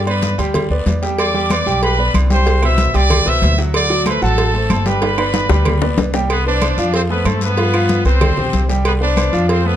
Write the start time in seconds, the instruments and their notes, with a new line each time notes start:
Already playing: upright bass G2
0.07 grand piano B3 B4 D5, trumpet section B4 B5, high conga, low agogo
0.22 cowbell, high conga, short guiro
0.38 upright bass D2, grand piano G3 G4 G5, high conga, low agogo, short guiro
0.54 cowbell, high conga, low conga, low agogo, long guiro
0.70 upright bass D2, grand piano B3 B4 D5, high conga
0.86 upright bass E2, cowbell, high conga, low timbale, low agogo, short guiro
1.02 grand piano G3 G4 G5, cowbell, short guiro
1.18 trumpet section D5 D6, cowbell, high conga, low agogo, long guiro, claves
1.34 grand piano G3 G4 G5, high conga
1.50 grand piano B3 B4 D5, trumpet section D5 D6, cowbell, high conga, low agogo, short guiro, claves
1.66 upright bass B1, grand piano G3 G4 G5, high conga, short guiro
1.82 trumpet section B4 B5, cowbell, high conga, low agogo, long guiro
1.98 grand piano B3 B4 D5, high conga
2.14 upright bass C2, cowbell, high conga, low agogo, short guiro, claves
2.30 grand piano G3 G4 G5, trumpet section C5 C6, cowbell, high conga, short guiro
2.46 grand piano G3 G4 G5, cowbell, high conga, low agogo, long guiro
2.62 grand piano B2 B4 C5, trumpet section E5 E6, high conga, low agogo, claves
2.78 cowbell, high conga, short guiro
2.94 upright bass C2, grand piano G3 G4 G5, trumpet section D5 D6, high conga, low agogo, short guiro
3.10 cowbell, high conga, low conga, low agogo, long guiro, claves
3.26 upright bass C2, grand piano B2 B4 C5, trumpet section E5 E6, high conga
3.42 upright bass D2, cowbell, high conga, low timbale, low agogo, short guiro
3.58 grand piano F#3 F#4 F#5, cowbell, short guiro
3.74 trumpet section D5 D6, cowbell, high conga, low agogo, long guiro, claves
3.90 grand piano F#3 F#4 F#5, high conga
4.06 grand piano A3 A4 C5, trumpet section B4 B5, cowbell, high conga, low agogo, short guiro, claves
4.22 upright bass A1, grand piano F#3 F#4 F#5, trumpet section A4 A5, high conga, short guiro
4.38 cowbell, high conga, low agogo, long guiro
4.54 grand piano A3 A4 C5, high conga
4.70 upright bass G1, trumpet section A4 A5, cowbell, high conga, low timbale, low agogo, short guiro, claves
4.86 grand piano G3 G4 G5, trumpet section B4 B5, cowbell, high conga, short guiro
5.02 grand piano G3 G4 G5, cowbell, high conga, high timbale, low agogo, long guiro
5.18 grand piano B3 B4 D5, high conga, high timbale, low agogo, claves
5.34 cowbell, high conga, high timbale, short guiro
5.49 upright bass D2, grand piano G3 G4 G5, high bongo, high conga, low agogo, short guiro
5.65 cowbell, high conga, low conga, low timbale, low agogo, long guiro, claves
5.82 grand piano B3 B4 D5, low bongo, high conga, low conga, low timbale
5.97 upright bass C2, cowbell, low bongo, high conga, low timbale, low agogo, short guiro
6.14 grand piano G3 G4 G5, cowbell, low bongo, low timbale, short guiro
6.30 trumpet section B3 B4, cowbell, high conga, low agogo, long guiro, claves
6.46 grand piano B3 B4 C5, trumpet section D4 D5, high conga
6.62 grand piano B3 B4 C5, cowbell, high conga, low agogo, short guiro, claves
6.77 upright bass F2, grand piano F3 F4 F5, high conga, short guiro
6.94 trumpet section C4 C5, cowbell, high conga, low agogo, long guiro
7.10 grand piano A3 A4 C5, trumpet section B3 B4, high conga
7.25 upright bass G2, grand piano A3 A4 C5, trumpet section A3 A4, cowbell, high conga, low timbale, low agogo, short guiro, claves
7.41 trumpet section B3 B4, cowbell, short guiro
7.57 grand piano F3 F4 F5, cowbell, high conga, low agogo, long guiro
7.74 grand piano F3 F4 F5, high conga, low agogo, claves
7.89 cowbell, high conga, short guiro
8.05 upright bass C2, grand piano B3 B4 C5, trumpet section C4 C5, high conga, low agogo, short guiro
8.21 grand piano G3 G4 G5, cowbell, high conga, low conga, low agogo, long guiro, claves
8.37 upright bass B1, grand piano C4 G4 C5, high conga, low conga
8.53 upright bass C2, cowbell, high conga, low agogo, short guiro
8.69 grand piano G3 G4 G5, cowbell, short guiro
8.85 trumpet section B3 B4, cowbell, high conga, low agogo, long guiro, claves
9.01 grand piano B3 B4 C5, trumpet section D4 D5, high conga
9.17 grand piano B3 B4 C5, cowbell, high conga, low agogo, short guiro, claves
9.33 upright bass F2, grand piano F3 F4 F5, high conga, short guiro
9.49 trumpet section C4 C5, cowbell, high conga, low agogo, long guiro
9.65 grand piano A3 A4 C5, trumpet section B3 B4, high conga